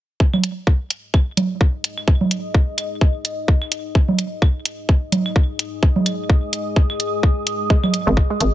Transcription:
0.20 8.54 G#3 medium
0.20 kick loud
0.34 high conga medium
0.34 claves medium
0.44 8.54 D#5 medium
0.44 closed hi-hat medium
0.53 8.54 D#6 medium
0.67 kick loud
0.73 8.54 G#4 medium
0.90 closed hi-hat medium
1.14 kick loud
1.14 claves medium
1.37 closed hi-hat medium
1.37 high conga medium
1.61 kick loud
1.84 closed hi-hat medium
1.98 claves medium
2.08 kick loud
2.21 high conga medium
2.31 closed hi-hat medium
2.54 kick loud
2.78 closed hi-hat medium
2.78 claves medium
3.01 kick loud
3.25 closed hi-hat medium
3.48 kick loud
3.62 claves medium
3.72 closed hi-hat medium
3.95 kick loud
4.09 high conga medium
4.19 closed hi-hat medium
4.42 kick loud
4.42 claves medium
4.65 closed hi-hat medium
4.89 kick loud
5.12 closed hi-hat medium
5.12 high conga medium
5.26 claves medium
5.36 kick loud
5.59 closed hi-hat medium
5.83 kick loud
5.96 high conga medium
6.06 closed hi-hat medium
6.06 claves medium
6.29 kick loud
6.53 closed hi-hat medium
6.76 kick loud
6.90 claves medium
7.00 closed hi-hat medium
7.23 kick loud
7.47 closed hi-hat medium
7.70 7.75 G#3 medium
7.70 kick loud
7.84 high conga medium
7.84 claves medium
7.94 closed hi-hat medium
8.07 8.22 G#1 loud
8.07 8.13 G#3 medium
8.17 kick loud
8.30 8.34 G#3 medium
8.40 8.50 G#1 medium
8.40 closed hi-hat medium

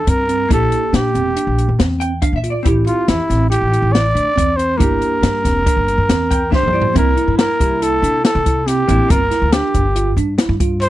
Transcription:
0.00 0.45 A#3 medium
0.00 0.46 D4 medium
0.00 0.47 E4 medium
0.00 0.11 A4 medium
0.07 0.44 G2 medium
0.07 0.23 C4 medium
0.07 0.51 A#4 medium
0.07 kick medium
0.07 closed hi-hat medium
0.29 0.45 C4 medium
0.29 closed hi-hat soft
0.49 0.69 A#1 medium
0.49 2.60 A#3 medium
0.49 2.61 D4 soft
0.49 0.82 E4 medium
0.49 2.62 G4 medium
0.49 kick medium
0.49 closed hi-hat medium
0.53 0.97 A4 medium
0.72 closed hi-hat soft
0.93 1.16 A#2 medium
0.93 1.09 D4 medium
0.93 1.80 G4 medium
0.93 snare medium
0.93 closed hi-hat medium
1.15 1.33 E1 medium
1.15 1.31 C4 medium
1.15 closed hi-hat medium
1.36 1.68 D4 medium
1.36 closed hi-hat medium
1.47 1.65 A#1 medium
1.58 closed hi-hat soft
1.69 1.78 A#2 medium
1.79 2.26 E2 medium
1.79 2.11 C4 medium
1.79 snare medium
1.79 closed hi-hat medium
2.00 2.20 G5 medium
2.00 closed hi-hat medium
2.22 2.38 D4 medium
2.22 2.35 F5 medium
2.22 kick medium
2.22 closed hi-hat medium
2.33 2.51 A#2 medium
2.33 2.49 E5 medium
2.44 2.60 F4 medium
2.44 closed hi-hat medium
2.50 2.64 D5 medium
2.63 2.84 A1 medium
2.63 4.75 C4 medium
2.63 4.76 E4 medium
2.63 2.81 E4 medium
2.63 4.77 G4 medium
2.63 kick medium
2.63 closed hi-hat medium
2.86 3.03 E4 medium
2.86 3.10 F4 medium
2.86 closed hi-hat medium
3.08 3.17 E2 medium
3.08 3.24 E4 medium
3.08 3.49 E4 medium
3.08 snare medium
3.08 closed hi-hat medium
3.30 3.57 A1 medium
3.30 3.46 C4 medium
3.30 snare soft
3.30 closed hi-hat medium
3.50 3.67 E4 medium
3.50 3.94 G4 medium
3.50 closed hi-hat medium
3.61 3.80 A1 medium
3.72 4.04 E4 medium
3.72 closed hi-hat soft
3.82 4.10 A1 medium
3.92 4.58 D5 medium
3.92 snare medium
3.92 closed hi-hat medium
4.14 4.24 D2 medium
4.14 4.31 D4 medium
4.14 closed hi-hat medium
4.36 4.75 E2 medium
4.36 4.52 C4 medium
4.36 kick medium
4.36 closed hi-hat medium
4.56 4.74 C4 medium
4.56 4.79 C5 medium
4.56 closed hi-hat medium
4.77 4.99 G1 medium
4.77 6.48 A#3 soft
4.77 6.48 D4 soft
4.77 5.12 E4 medium
4.77 6.49 G4 medium
4.77 6.51 A#4 medium
4.77 kick medium
4.77 closed hi-hat medium
5.02 closed hi-hat soft
5.22 5.46 G2 medium
5.22 5.39 D4 medium
5.22 snare loud
5.22 closed hi-hat medium
5.44 5.63 E1 medium
5.44 5.60 C4 medium
5.44 kick medium
5.44 snare soft
5.44 closed hi-hat medium
5.66 5.98 D4 medium
5.66 kick medium
5.66 closed hi-hat medium
5.77 5.95 G1 medium
5.88 closed hi-hat soft
5.98 6.07 G2 medium
6.09 6.55 E2 medium
6.09 6.42 C4 medium
6.09 snare medium
6.09 closed hi-hat medium
6.31 6.51 G5 soft
6.31 kick medium
6.31 closed hi-hat medium
6.50 6.92 A#3 soft
6.50 6.94 D4 soft
6.50 6.68 D4 medium
6.50 6.95 G4 medium
6.50 6.93 C5 medium
6.50 6.72 E5 soft
6.50 kick medium
6.50 snare soft
6.63 6.82 G2 medium
6.67 mid tom soft
6.73 6.90 E4 medium
6.73 6.94 D5 medium
6.82 floor tom medium
6.93 7.14 C2 medium
6.93 8.84 A#3 medium
6.93 7.11 C4 medium
6.93 8.85 D4 soft
6.93 8.85 E4 medium
6.93 7.36 A#4 medium
6.93 kick loud
6.93 closed hi-hat medium
7.17 7.49 E4 medium
7.17 closed hi-hat medium
7.28 7.46 G2 medium
7.38 7.84 A#4 medium
7.38 snare loud
7.38 closed hi-hat medium
7.60 7.97 C2 medium
7.60 7.76 G4 medium
7.60 kick medium
7.60 closed hi-hat medium
7.82 7.98 E4 medium
7.82 8.24 A4 medium
7.82 closed hi-hat medium
8.02 8.21 C3 medium
8.02 8.19 D4 medium
8.02 closed hi-hat medium
8.24 8.40 E4 medium
8.24 8.69 A4 medium
8.24 snare loud
8.24 closed hi-hat medium
8.35 8.81 C3 medium
8.45 8.62 E4 medium
8.45 kick medium
8.45 closed hi-hat medium
8.67 8.83 C4 medium
8.67 9.12 G4 medium
8.67 snare soft
8.67 closed hi-hat medium
8.88 8.98 A1 medium
8.88 9.07 A#3 soft
8.88 9.21 C4 medium
8.88 9.10 D4 soft
8.88 9.10 E4 soft
8.88 closed hi-hat medium
9.08 9.29 G1 medium
9.08 10.89 A#3 medium
9.08 10.89 F4 soft
9.08 9.54 A#4 medium
9.08 10.89 A#4 medium
9.08 kick loud
9.08 closed hi-hat medium
9.31 9.47 E4 medium
9.31 snare soft
9.31 closed hi-hat medium
9.42 9.60 D2 medium
9.53 9.85 D4 medium
9.53 10.17 G4 medium
9.53 snare medium
9.53 closed hi-hat medium
9.74 10.12 G1 medium
9.74 kick medium
9.74 closed hi-hat medium
9.96 10.12 F4 medium
9.96 closed hi-hat medium
10.17 10.35 G2 medium
10.17 10.33 D4 medium
10.17 closed hi-hat medium
10.38 10.54 E4 medium
10.38 snare medium
10.38 closed hi-hat medium
10.49 10.89 G2 medium
10.60 10.89 F4 medium
10.60 kick medium
10.60 closed hi-hat medium
10.82 10.89 C5 medium
10.82 closed hi-hat medium

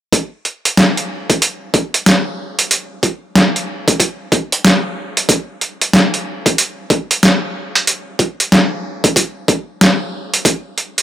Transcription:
0.13 kick loud
0.13 closed hi-hat medium
0.45 closed hi-hat soft
0.65 closed hi-hat soft
0.77 snare loud
0.77 closed hi-hat medium
0.97 closed hi-hat soft
1.30 kick loud
1.30 closed hi-hat soft
1.42 closed hi-hat medium
1.74 kick medium
1.74 closed hi-hat soft
1.94 closed hi-hat soft
2.06 snare loud
2.06 closed hi-hat medium
2.59 closed hi-hat medium
2.71 closed hi-hat medium
3.03 kick medium
3.03 closed hi-hat soft
3.35 snare loud
3.35 closed hi-hat medium
3.56 closed hi-hat soft
3.88 kick loud
3.88 closed hi-hat soft
4.00 kick medium
4.00 closed hi-hat medium
4.32 kick loud
4.32 closed hi-hat soft
4.52 closed hi-hat medium
4.65 snare loud
4.65 closed hi-hat medium
5.17 closed hi-hat medium
5.29 kick loud
5.29 closed hi-hat medium
5.61 closed hi-hat soft
5.81 closed hi-hat soft
5.93 snare loud
5.93 closed hi-hat medium
6.14 closed hi-hat soft
6.46 kick loud
6.46 closed hi-hat soft
6.58 closed hi-hat medium
6.90 kick loud
6.90 closed hi-hat soft
7.11 closed hi-hat soft
7.23 snare loud
7.23 closed hi-hat medium
7.75 closed hi-hat medium
7.87 closed hi-hat medium
8.19 kick medium
8.19 closed hi-hat soft
8.40 closed hi-hat soft
8.52 snare loud
8.52 closed hi-hat medium
9.04 kick loud
9.04 closed hi-hat soft
9.16 kick medium
9.16 closed hi-hat medium
9.48 kick loud
9.48 closed hi-hat soft
9.81 snare loud
9.81 closed hi-hat medium
10.34 closed hi-hat soft
10.45 kick loud
10.45 closed hi-hat medium
10.78 closed hi-hat soft
10.98 closed hi-hat soft

